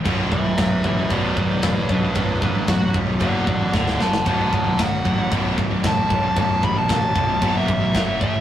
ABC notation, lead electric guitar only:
X:1
M:4/4
L:1/16
Q:1/4=114
K:Bm
V:1 name="Lead electric guitar"
z2 [Be]2 [Be]2 [Be]2 [Bd]2 [Bd]2 [Bd]2 [DB]2 | [DB]2 [DB]2 F2 z2 [df]2 [df]2 [df]2 [fa]2 | [fa]2 [fa]2 f4 z4 a4 | a2 b a6 e4- e e2 |]